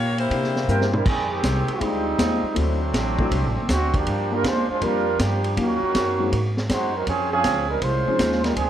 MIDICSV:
0, 0, Header, 1, 8, 480
1, 0, Start_track
1, 0, Tempo, 375940
1, 1348, Time_signature, 4, 2, 24, 8
1, 11107, End_track
2, 0, Start_track
2, 0, Title_t, "Trumpet section"
2, 0, Program_c, 0, 61
2, 877, Note_on_c, 0, 72, 63
2, 878, Note_on_c, 0, 79, 79
2, 879, Note_on_c, 0, 70, 68
2, 879, Note_on_c, 0, 76, 61
2, 1089, Note_off_c, 0, 72, 0
2, 1089, Note_off_c, 0, 79, 0
2, 1091, Note_off_c, 0, 70, 0
2, 1091, Note_off_c, 0, 76, 0
2, 11107, End_track
3, 0, Start_track
3, 0, Title_t, "Saxophone section"
3, 0, Program_c, 1, 65
3, 0, Note_on_c, 1, 58, 99
3, 0, Note_on_c, 1, 65, 94
3, 0, Note_on_c, 1, 67, 93
3, 0, Note_on_c, 1, 73, 107
3, 182, Note_off_c, 1, 73, 0
3, 185, Note_off_c, 1, 58, 0
3, 186, Note_off_c, 1, 67, 0
3, 187, Note_off_c, 1, 65, 0
3, 242, Note_on_c, 1, 67, 80
3, 246, Note_on_c, 1, 64, 80
3, 249, Note_on_c, 1, 72, 91
3, 250, Note_on_c, 1, 58, 79
3, 1144, Note_off_c, 1, 67, 0
3, 1146, Note_off_c, 1, 64, 0
3, 1148, Note_off_c, 1, 58, 0
3, 1148, Note_off_c, 1, 72, 0
3, 11107, End_track
4, 0, Start_track
4, 0, Title_t, "Grand piano"
4, 0, Program_c, 2, 0
4, 388, Note_on_c, 2, 58, 55
4, 393, Note_on_c, 2, 62, 50
4, 394, Note_on_c, 2, 60, 51
4, 399, Note_on_c, 2, 67, 62
4, 406, Note_on_c, 2, 64, 49
4, 675, Note_off_c, 2, 58, 0
4, 677, Note_off_c, 2, 62, 0
4, 678, Note_off_c, 2, 60, 0
4, 681, Note_off_c, 2, 67, 0
4, 684, Note_off_c, 2, 64, 0
4, 871, Note_on_c, 2, 58, 54
4, 873, Note_on_c, 2, 62, 50
4, 876, Note_on_c, 2, 60, 51
4, 882, Note_on_c, 2, 64, 51
4, 884, Note_on_c, 2, 70, 67
4, 1157, Note_off_c, 2, 58, 0
4, 1158, Note_off_c, 2, 62, 0
4, 1159, Note_off_c, 2, 60, 0
4, 1162, Note_off_c, 2, 64, 0
4, 1163, Note_off_c, 2, 70, 0
4, 2294, Note_on_c, 2, 56, 63
4, 2301, Note_on_c, 2, 60, 59
4, 2306, Note_on_c, 2, 63, 60
4, 2310, Note_on_c, 2, 65, 58
4, 2310, Note_on_c, 2, 67, 73
4, 2589, Note_off_c, 2, 56, 0
4, 2592, Note_off_c, 2, 60, 0
4, 2594, Note_off_c, 2, 63, 0
4, 2597, Note_off_c, 2, 65, 0
4, 2597, Note_off_c, 2, 67, 0
4, 2788, Note_on_c, 2, 56, 62
4, 2790, Note_on_c, 2, 60, 57
4, 2794, Note_on_c, 2, 63, 61
4, 2801, Note_on_c, 2, 65, 58
4, 2807, Note_on_c, 2, 67, 70
4, 3076, Note_off_c, 2, 56, 0
4, 3077, Note_off_c, 2, 60, 0
4, 3078, Note_off_c, 2, 63, 0
4, 3082, Note_off_c, 2, 65, 0
4, 3085, Note_off_c, 2, 67, 0
4, 3244, Note_on_c, 2, 57, 66
4, 3251, Note_on_c, 2, 60, 56
4, 3259, Note_on_c, 2, 64, 61
4, 3262, Note_on_c, 2, 62, 59
4, 3268, Note_on_c, 2, 66, 73
4, 3544, Note_off_c, 2, 57, 0
4, 3547, Note_off_c, 2, 60, 0
4, 3551, Note_off_c, 2, 64, 0
4, 3553, Note_off_c, 2, 62, 0
4, 3556, Note_off_c, 2, 66, 0
4, 4075, Note_on_c, 2, 57, 64
4, 4077, Note_on_c, 2, 60, 58
4, 4081, Note_on_c, 2, 62, 57
4, 4085, Note_on_c, 2, 64, 58
4, 4088, Note_on_c, 2, 66, 74
4, 4217, Note_off_c, 2, 57, 0
4, 4218, Note_off_c, 2, 60, 0
4, 4220, Note_off_c, 2, 62, 0
4, 4222, Note_off_c, 2, 64, 0
4, 4224, Note_off_c, 2, 66, 0
4, 5505, Note_on_c, 2, 55, 65
4, 5510, Note_on_c, 2, 58, 63
4, 5518, Note_on_c, 2, 62, 64
4, 5519, Note_on_c, 2, 65, 60
4, 5525, Note_on_c, 2, 67, 74
4, 5652, Note_off_c, 2, 55, 0
4, 5655, Note_off_c, 2, 58, 0
4, 5659, Note_off_c, 2, 62, 0
4, 5659, Note_off_c, 2, 65, 0
4, 5662, Note_off_c, 2, 67, 0
4, 6139, Note_on_c, 2, 55, 63
4, 6150, Note_on_c, 2, 58, 57
4, 6150, Note_on_c, 2, 62, 58
4, 6159, Note_on_c, 2, 65, 60
4, 6160, Note_on_c, 2, 70, 74
4, 6431, Note_off_c, 2, 55, 0
4, 6437, Note_off_c, 2, 58, 0
4, 6437, Note_off_c, 2, 62, 0
4, 6441, Note_off_c, 2, 65, 0
4, 6442, Note_off_c, 2, 70, 0
4, 7106, Note_on_c, 2, 58, 53
4, 7108, Note_on_c, 2, 54, 58
4, 7111, Note_on_c, 2, 61, 57
4, 7115, Note_on_c, 2, 63, 54
4, 7121, Note_on_c, 2, 65, 68
4, 7394, Note_off_c, 2, 58, 0
4, 7396, Note_off_c, 2, 54, 0
4, 7397, Note_off_c, 2, 61, 0
4, 7399, Note_off_c, 2, 63, 0
4, 7402, Note_off_c, 2, 65, 0
4, 7894, Note_on_c, 2, 54, 62
4, 7905, Note_on_c, 2, 56, 57
4, 7905, Note_on_c, 2, 58, 53
4, 7905, Note_on_c, 2, 60, 57
4, 7916, Note_on_c, 2, 63, 64
4, 8046, Note_off_c, 2, 54, 0
4, 8052, Note_off_c, 2, 56, 0
4, 8052, Note_off_c, 2, 58, 0
4, 8052, Note_off_c, 2, 60, 0
4, 8058, Note_off_c, 2, 63, 0
4, 10305, Note_on_c, 2, 53, 68
4, 10308, Note_on_c, 2, 56, 61
4, 10310, Note_on_c, 2, 60, 61
4, 10314, Note_on_c, 2, 61, 63
4, 10322, Note_on_c, 2, 63, 72
4, 10914, Note_off_c, 2, 53, 0
4, 10916, Note_off_c, 2, 56, 0
4, 10917, Note_off_c, 2, 60, 0
4, 10919, Note_off_c, 2, 61, 0
4, 10923, Note_off_c, 2, 63, 0
4, 11107, End_track
5, 0, Start_track
5, 0, Title_t, "Trombone section"
5, 0, Program_c, 3, 61
5, 898, Note_on_c, 3, 72, 98
5, 901, Note_on_c, 3, 64, 82
5, 903, Note_on_c, 3, 58, 85
5, 904, Note_on_c, 3, 67, 86
5, 1181, Note_off_c, 3, 72, 0
5, 1183, Note_off_c, 3, 64, 0
5, 1184, Note_off_c, 3, 58, 0
5, 1184, Note_off_c, 3, 67, 0
5, 1201, Note_on_c, 3, 64, 80
5, 1202, Note_on_c, 3, 60, 80
5, 1206, Note_on_c, 3, 70, 94
5, 1207, Note_on_c, 3, 55, 80
5, 1345, Note_off_c, 3, 60, 0
5, 1345, Note_off_c, 3, 64, 0
5, 1348, Note_off_c, 3, 55, 0
5, 1348, Note_off_c, 3, 70, 0
5, 1373, Note_on_c, 3, 51, 87
5, 1374, Note_on_c, 3, 55, 83
5, 1374, Note_on_c, 3, 60, 79
5, 1377, Note_on_c, 3, 68, 97
5, 1659, Note_off_c, 3, 51, 0
5, 1659, Note_off_c, 3, 55, 0
5, 1659, Note_off_c, 3, 60, 0
5, 1660, Note_off_c, 3, 68, 0
5, 1680, Note_on_c, 3, 67, 111
5, 1683, Note_on_c, 3, 56, 95
5, 1684, Note_on_c, 3, 60, 90
5, 1688, Note_on_c, 3, 51, 95
5, 2309, Note_off_c, 3, 60, 0
5, 2316, Note_off_c, 3, 67, 0
5, 2317, Note_off_c, 3, 56, 0
5, 2320, Note_off_c, 3, 51, 0
5, 2323, Note_on_c, 3, 63, 100
5, 2325, Note_on_c, 3, 60, 81
5, 2330, Note_on_c, 3, 56, 81
5, 2331, Note_on_c, 3, 55, 82
5, 3277, Note_off_c, 3, 63, 0
5, 3278, Note_off_c, 3, 60, 0
5, 3280, Note_off_c, 3, 56, 0
5, 3281, Note_off_c, 3, 55, 0
5, 3285, Note_on_c, 3, 54, 88
5, 3287, Note_on_c, 3, 57, 84
5, 3292, Note_on_c, 3, 60, 79
5, 3292, Note_on_c, 3, 62, 103
5, 4667, Note_off_c, 3, 54, 0
5, 4668, Note_off_c, 3, 57, 0
5, 4670, Note_off_c, 3, 60, 0
5, 4670, Note_off_c, 3, 62, 0
5, 4730, Note_on_c, 3, 57, 80
5, 4730, Note_on_c, 3, 66, 96
5, 4731, Note_on_c, 3, 60, 83
5, 4739, Note_on_c, 3, 50, 82
5, 5017, Note_off_c, 3, 57, 0
5, 5017, Note_off_c, 3, 66, 0
5, 5018, Note_off_c, 3, 60, 0
5, 5022, Note_off_c, 3, 50, 0
5, 5037, Note_on_c, 3, 53, 92
5, 5039, Note_on_c, 3, 58, 91
5, 5039, Note_on_c, 3, 62, 92
5, 5045, Note_on_c, 3, 67, 103
5, 5513, Note_off_c, 3, 53, 0
5, 5514, Note_off_c, 3, 58, 0
5, 5514, Note_off_c, 3, 62, 0
5, 5517, Note_off_c, 3, 67, 0
5, 5526, Note_on_c, 3, 55, 85
5, 5529, Note_on_c, 3, 62, 87
5, 5529, Note_on_c, 3, 70, 105
5, 5530, Note_on_c, 3, 65, 87
5, 5672, Note_off_c, 3, 65, 0
5, 5679, Note_off_c, 3, 55, 0
5, 5680, Note_off_c, 3, 62, 0
5, 5681, Note_off_c, 3, 70, 0
5, 5687, Note_on_c, 3, 65, 86
5, 5691, Note_on_c, 3, 56, 96
5, 5695, Note_on_c, 3, 62, 86
5, 5698, Note_on_c, 3, 72, 102
5, 5990, Note_off_c, 3, 62, 0
5, 5991, Note_off_c, 3, 72, 0
5, 5997, Note_off_c, 3, 65, 0
5, 5999, Note_off_c, 3, 56, 0
5, 6006, Note_on_c, 3, 62, 83
5, 6006, Note_on_c, 3, 72, 97
5, 6011, Note_on_c, 3, 65, 83
5, 6012, Note_on_c, 3, 56, 83
5, 6148, Note_off_c, 3, 62, 0
5, 6148, Note_off_c, 3, 65, 0
5, 6148, Note_off_c, 3, 72, 0
5, 6151, Note_off_c, 3, 56, 0
5, 6163, Note_on_c, 3, 65, 83
5, 6170, Note_on_c, 3, 62, 90
5, 6172, Note_on_c, 3, 55, 92
5, 6172, Note_on_c, 3, 70, 107
5, 6637, Note_off_c, 3, 62, 0
5, 6637, Note_off_c, 3, 65, 0
5, 6641, Note_off_c, 3, 55, 0
5, 6641, Note_off_c, 3, 70, 0
5, 6652, Note_on_c, 3, 62, 84
5, 6653, Note_on_c, 3, 67, 95
5, 6656, Note_on_c, 3, 53, 82
5, 6662, Note_on_c, 3, 58, 85
5, 7088, Note_off_c, 3, 62, 0
5, 7089, Note_off_c, 3, 67, 0
5, 7090, Note_off_c, 3, 53, 0
5, 7093, Note_off_c, 3, 58, 0
5, 7134, Note_on_c, 3, 61, 81
5, 7137, Note_on_c, 3, 51, 90
5, 7138, Note_on_c, 3, 58, 92
5, 7139, Note_on_c, 3, 66, 101
5, 8263, Note_off_c, 3, 61, 0
5, 8264, Note_off_c, 3, 51, 0
5, 8265, Note_off_c, 3, 58, 0
5, 8265, Note_off_c, 3, 66, 0
5, 8563, Note_on_c, 3, 63, 83
5, 8566, Note_on_c, 3, 72, 97
5, 8572, Note_on_c, 3, 56, 83
5, 8573, Note_on_c, 3, 66, 83
5, 8853, Note_off_c, 3, 63, 0
5, 8854, Note_off_c, 3, 72, 0
5, 8857, Note_off_c, 3, 56, 0
5, 8858, Note_off_c, 3, 66, 0
5, 8884, Note_on_c, 3, 54, 81
5, 8884, Note_on_c, 3, 63, 82
5, 8884, Note_on_c, 3, 70, 96
5, 8889, Note_on_c, 3, 60, 77
5, 9018, Note_off_c, 3, 60, 0
5, 9033, Note_on_c, 3, 60, 78
5, 9034, Note_on_c, 3, 53, 84
5, 9034, Note_on_c, 3, 61, 84
5, 9037, Note_off_c, 3, 54, 0
5, 9037, Note_off_c, 3, 63, 0
5, 9037, Note_off_c, 3, 70, 0
5, 9038, Note_on_c, 3, 68, 89
5, 9327, Note_off_c, 3, 60, 0
5, 9328, Note_off_c, 3, 53, 0
5, 9328, Note_off_c, 3, 61, 0
5, 9330, Note_off_c, 3, 68, 0
5, 9358, Note_on_c, 3, 61, 88
5, 9362, Note_on_c, 3, 68, 106
5, 9363, Note_on_c, 3, 60, 92
5, 9366, Note_on_c, 3, 53, 86
5, 9799, Note_off_c, 3, 61, 0
5, 9801, Note_off_c, 3, 68, 0
5, 9802, Note_off_c, 3, 60, 0
5, 9803, Note_off_c, 3, 53, 0
5, 9819, Note_on_c, 3, 55, 75
5, 9819, Note_on_c, 3, 60, 77
5, 9819, Note_on_c, 3, 63, 75
5, 9820, Note_on_c, 3, 70, 94
5, 9973, Note_off_c, 3, 55, 0
5, 9973, Note_off_c, 3, 60, 0
5, 9973, Note_off_c, 3, 63, 0
5, 9973, Note_off_c, 3, 70, 0
5, 9983, Note_on_c, 3, 72, 102
5, 9984, Note_on_c, 3, 56, 86
5, 9984, Note_on_c, 3, 65, 86
5, 9985, Note_on_c, 3, 61, 86
5, 10780, Note_on_c, 3, 63, 83
5, 10781, Note_on_c, 3, 60, 80
5, 10784, Note_off_c, 3, 56, 0
5, 10784, Note_off_c, 3, 61, 0
5, 10784, Note_off_c, 3, 65, 0
5, 10784, Note_off_c, 3, 72, 0
5, 10786, Note_on_c, 3, 70, 91
5, 10788, Note_on_c, 3, 55, 83
5, 10913, Note_off_c, 3, 60, 0
5, 10927, Note_on_c, 3, 68, 97
5, 10928, Note_on_c, 3, 60, 80
5, 10933, Note_on_c, 3, 53, 79
5, 10934, Note_on_c, 3, 62, 84
5, 10944, Note_off_c, 3, 63, 0
5, 10948, Note_off_c, 3, 55, 0
5, 10948, Note_off_c, 3, 70, 0
5, 11107, Note_off_c, 3, 53, 0
5, 11107, Note_off_c, 3, 60, 0
5, 11107, Note_off_c, 3, 62, 0
5, 11107, Note_off_c, 3, 68, 0
5, 11107, End_track
6, 0, Start_track
6, 0, Title_t, "Upright bass"
6, 0, Program_c, 4, 32
6, 0, Note_on_c, 4, 46, 90
6, 371, Note_off_c, 4, 46, 0
6, 391, Note_on_c, 4, 48, 88
6, 856, Note_off_c, 4, 48, 0
6, 871, Note_on_c, 4, 43, 88
6, 1336, Note_off_c, 4, 43, 0
6, 1345, Note_on_c, 4, 41, 83
6, 1813, Note_off_c, 4, 41, 0
6, 1835, Note_on_c, 4, 36, 91
6, 2129, Note_off_c, 4, 36, 0
6, 2310, Note_on_c, 4, 38, 87
6, 2776, Note_off_c, 4, 38, 0
6, 2793, Note_on_c, 4, 39, 93
6, 3088, Note_off_c, 4, 39, 0
6, 3272, Note_on_c, 4, 38, 85
6, 3737, Note_off_c, 4, 38, 0
6, 3747, Note_on_c, 4, 33, 88
6, 4214, Note_off_c, 4, 33, 0
6, 4230, Note_on_c, 4, 36, 88
6, 4398, Note_off_c, 4, 36, 0
6, 4398, Note_on_c, 4, 33, 59
6, 4541, Note_off_c, 4, 33, 0
6, 4548, Note_on_c, 4, 30, 70
6, 4698, Note_off_c, 4, 30, 0
6, 4709, Note_on_c, 4, 38, 94
6, 5176, Note_off_c, 4, 38, 0
6, 5188, Note_on_c, 4, 43, 85
6, 5655, Note_off_c, 4, 43, 0
6, 5671, Note_on_c, 4, 39, 91
6, 5967, Note_off_c, 4, 39, 0
6, 6152, Note_on_c, 4, 41, 91
6, 6617, Note_off_c, 4, 41, 0
6, 6632, Note_on_c, 4, 43, 91
6, 7097, Note_off_c, 4, 43, 0
6, 7111, Note_on_c, 4, 39, 88
6, 7407, Note_off_c, 4, 39, 0
6, 7589, Note_on_c, 4, 42, 93
6, 8055, Note_off_c, 4, 42, 0
6, 8073, Note_on_c, 4, 44, 83
6, 8537, Note_off_c, 4, 44, 0
6, 8544, Note_on_c, 4, 42, 91
6, 9012, Note_off_c, 4, 42, 0
6, 9028, Note_on_c, 4, 41, 89
6, 9494, Note_off_c, 4, 41, 0
6, 9504, Note_on_c, 4, 37, 89
6, 9972, Note_off_c, 4, 37, 0
6, 9982, Note_on_c, 4, 36, 87
6, 10281, Note_off_c, 4, 36, 0
6, 10456, Note_on_c, 4, 39, 94
6, 10927, Note_off_c, 4, 39, 0
6, 10937, Note_on_c, 4, 38, 87
6, 11107, Note_off_c, 4, 38, 0
6, 11107, End_track
7, 0, Start_track
7, 0, Title_t, "Muted upright bass strokes"
7, 2147, Note_on_c, 9, 29, 43
7, 2274, Note_off_c, 9, 29, 0
7, 3104, Note_on_c, 9, 29, 39
7, 3231, Note_off_c, 9, 29, 0
7, 5997, Note_on_c, 9, 29, 43
7, 6125, Note_off_c, 9, 29, 0
7, 7438, Note_on_c, 9, 29, 39
7, 7565, Note_off_c, 9, 29, 0
7, 10307, Note_on_c, 9, 29, 41
7, 10435, Note_off_c, 9, 29, 0
7, 11107, End_track
8, 0, Start_track
8, 0, Title_t, "Drums"
8, 232, Note_on_c, 9, 51, 50
8, 360, Note_off_c, 9, 51, 0
8, 391, Note_on_c, 9, 36, 18
8, 396, Note_on_c, 9, 51, 60
8, 519, Note_off_c, 9, 36, 0
8, 524, Note_off_c, 9, 51, 0
8, 554, Note_on_c, 9, 38, 29
8, 682, Note_off_c, 9, 38, 0
8, 713, Note_on_c, 9, 38, 41
8, 840, Note_off_c, 9, 38, 0
8, 876, Note_on_c, 9, 44, 57
8, 1003, Note_off_c, 9, 44, 0
8, 1034, Note_on_c, 9, 38, 57
8, 1162, Note_off_c, 9, 38, 0
8, 1193, Note_on_c, 9, 47, 85
8, 1320, Note_off_c, 9, 47, 0
8, 1351, Note_on_c, 9, 36, 77
8, 1351, Note_on_c, 9, 49, 79
8, 1478, Note_off_c, 9, 36, 0
8, 1479, Note_off_c, 9, 49, 0
8, 1830, Note_on_c, 9, 36, 27
8, 1832, Note_on_c, 9, 38, 73
8, 1832, Note_on_c, 9, 44, 63
8, 1832, Note_on_c, 9, 51, 75
8, 1957, Note_off_c, 9, 36, 0
8, 1960, Note_off_c, 9, 38, 0
8, 1960, Note_off_c, 9, 44, 0
8, 1960, Note_off_c, 9, 51, 0
8, 2147, Note_on_c, 9, 51, 50
8, 2275, Note_off_c, 9, 51, 0
8, 2311, Note_on_c, 9, 36, 25
8, 2312, Note_on_c, 9, 51, 65
8, 2438, Note_off_c, 9, 36, 0
8, 2440, Note_off_c, 9, 51, 0
8, 2791, Note_on_c, 9, 36, 27
8, 2796, Note_on_c, 9, 38, 74
8, 2796, Note_on_c, 9, 44, 61
8, 2796, Note_on_c, 9, 51, 73
8, 2918, Note_off_c, 9, 36, 0
8, 2923, Note_off_c, 9, 38, 0
8, 2923, Note_off_c, 9, 44, 0
8, 2923, Note_off_c, 9, 51, 0
8, 3269, Note_on_c, 9, 36, 20
8, 3269, Note_on_c, 9, 51, 72
8, 3397, Note_off_c, 9, 36, 0
8, 3397, Note_off_c, 9, 51, 0
8, 3750, Note_on_c, 9, 36, 28
8, 3755, Note_on_c, 9, 38, 76
8, 3755, Note_on_c, 9, 44, 61
8, 3755, Note_on_c, 9, 51, 68
8, 3878, Note_off_c, 9, 36, 0
8, 3882, Note_off_c, 9, 38, 0
8, 3882, Note_off_c, 9, 44, 0
8, 3882, Note_off_c, 9, 51, 0
8, 4067, Note_on_c, 9, 36, 60
8, 4195, Note_off_c, 9, 36, 0
8, 4229, Note_on_c, 9, 36, 24
8, 4232, Note_on_c, 9, 51, 66
8, 4357, Note_off_c, 9, 36, 0
8, 4360, Note_off_c, 9, 51, 0
8, 4708, Note_on_c, 9, 36, 28
8, 4708, Note_on_c, 9, 38, 77
8, 4708, Note_on_c, 9, 44, 62
8, 4708, Note_on_c, 9, 51, 73
8, 4836, Note_off_c, 9, 36, 0
8, 4836, Note_off_c, 9, 38, 0
8, 4836, Note_off_c, 9, 44, 0
8, 4836, Note_off_c, 9, 51, 0
8, 5027, Note_on_c, 9, 36, 57
8, 5029, Note_on_c, 9, 51, 52
8, 5154, Note_off_c, 9, 36, 0
8, 5157, Note_off_c, 9, 51, 0
8, 5188, Note_on_c, 9, 36, 22
8, 5191, Note_on_c, 9, 51, 62
8, 5315, Note_off_c, 9, 36, 0
8, 5318, Note_off_c, 9, 51, 0
8, 5669, Note_on_c, 9, 36, 27
8, 5672, Note_on_c, 9, 38, 74
8, 5672, Note_on_c, 9, 44, 55
8, 5672, Note_on_c, 9, 51, 72
8, 5796, Note_off_c, 9, 36, 0
8, 5800, Note_off_c, 9, 38, 0
8, 5800, Note_off_c, 9, 44, 0
8, 5800, Note_off_c, 9, 51, 0
8, 6147, Note_on_c, 9, 36, 26
8, 6148, Note_on_c, 9, 51, 66
8, 6274, Note_off_c, 9, 36, 0
8, 6275, Note_off_c, 9, 51, 0
8, 6630, Note_on_c, 9, 36, 20
8, 6631, Note_on_c, 9, 38, 79
8, 6631, Note_on_c, 9, 44, 68
8, 6631, Note_on_c, 9, 51, 79
8, 6757, Note_off_c, 9, 36, 0
8, 6759, Note_off_c, 9, 38, 0
8, 6759, Note_off_c, 9, 44, 0
8, 6759, Note_off_c, 9, 51, 0
8, 6948, Note_on_c, 9, 51, 52
8, 7075, Note_off_c, 9, 51, 0
8, 7111, Note_on_c, 9, 36, 27
8, 7114, Note_on_c, 9, 51, 71
8, 7239, Note_off_c, 9, 36, 0
8, 7242, Note_off_c, 9, 51, 0
8, 7593, Note_on_c, 9, 36, 21
8, 7593, Note_on_c, 9, 38, 75
8, 7593, Note_on_c, 9, 44, 55
8, 7593, Note_on_c, 9, 51, 77
8, 7721, Note_off_c, 9, 36, 0
8, 7721, Note_off_c, 9, 38, 0
8, 7721, Note_off_c, 9, 44, 0
8, 7721, Note_off_c, 9, 51, 0
8, 8073, Note_on_c, 9, 36, 24
8, 8076, Note_on_c, 9, 51, 71
8, 8201, Note_off_c, 9, 36, 0
8, 8204, Note_off_c, 9, 51, 0
8, 8390, Note_on_c, 9, 38, 48
8, 8517, Note_off_c, 9, 38, 0
8, 8547, Note_on_c, 9, 38, 74
8, 8547, Note_on_c, 9, 44, 66
8, 8547, Note_on_c, 9, 51, 77
8, 8549, Note_on_c, 9, 36, 24
8, 8675, Note_off_c, 9, 38, 0
8, 8675, Note_off_c, 9, 44, 0
8, 8675, Note_off_c, 9, 51, 0
8, 8677, Note_off_c, 9, 36, 0
8, 9023, Note_on_c, 9, 51, 61
8, 9027, Note_on_c, 9, 36, 20
8, 9151, Note_off_c, 9, 51, 0
8, 9154, Note_off_c, 9, 36, 0
8, 9498, Note_on_c, 9, 38, 73
8, 9498, Note_on_c, 9, 44, 54
8, 9498, Note_on_c, 9, 51, 78
8, 9504, Note_on_c, 9, 36, 20
8, 9626, Note_off_c, 9, 38, 0
8, 9626, Note_off_c, 9, 44, 0
8, 9626, Note_off_c, 9, 51, 0
8, 9632, Note_off_c, 9, 36, 0
8, 9980, Note_on_c, 9, 51, 64
8, 9981, Note_on_c, 9, 36, 20
8, 10107, Note_off_c, 9, 51, 0
8, 10109, Note_off_c, 9, 36, 0
8, 10457, Note_on_c, 9, 38, 76
8, 10457, Note_on_c, 9, 44, 60
8, 10457, Note_on_c, 9, 51, 77
8, 10459, Note_on_c, 9, 36, 23
8, 10585, Note_off_c, 9, 38, 0
8, 10585, Note_off_c, 9, 44, 0
8, 10585, Note_off_c, 9, 51, 0
8, 10587, Note_off_c, 9, 36, 0
8, 10617, Note_on_c, 9, 38, 31
8, 10745, Note_off_c, 9, 38, 0
8, 10777, Note_on_c, 9, 51, 54
8, 10778, Note_on_c, 9, 38, 49
8, 10905, Note_off_c, 9, 51, 0
8, 10906, Note_off_c, 9, 38, 0
8, 10936, Note_on_c, 9, 51, 67
8, 10937, Note_on_c, 9, 36, 26
8, 11063, Note_off_c, 9, 51, 0
8, 11064, Note_off_c, 9, 36, 0
8, 11107, End_track
0, 0, End_of_file